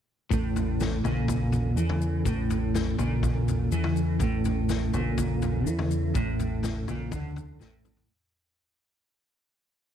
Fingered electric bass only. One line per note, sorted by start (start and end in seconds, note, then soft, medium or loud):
0.32 1.01 A1 medium
1.05 1.73 A#1 medium
1.76 2.22 E2 medium
2.25 2.94 A1 medium
2.99 3.68 A#1 medium
3.72 4.17 E2 loud
4.21 4.90 A1 medium
4.94 5.63 A#1 medium
5.66 6.12 E2 medium
6.15 6.84 A1 medium
6.90 7.12 A#1 medium
7.12 7.57 D2 medium
7.62 8.06 A1 medium